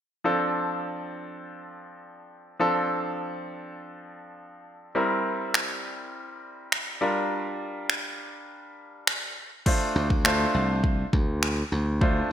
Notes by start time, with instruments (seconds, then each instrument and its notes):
0.24 grand piano F3 C4 D4 A4
2.60 grand piano F3 C4 D4 A4
4.95 grand piano G3 C4 E4 A#4
5.54 finger snap
6.72 finger snap
7.01 grand piano G3 D4 F4 A#4
7.90 finger snap
9.07 finger snap
9.66 grand piano A3 D4 F4 C5, kick, crash
9.96 slap bass D2
10.10 kick
10.25 grand piano A3 D4 F4 C5, finger snap
10.54 slap bass C2
10.84 kick
11.13 slap bass D2, kick
11.43 finger snap
11.72 slap bass D2
12.01 grand piano A3 D4 F4 C5, kick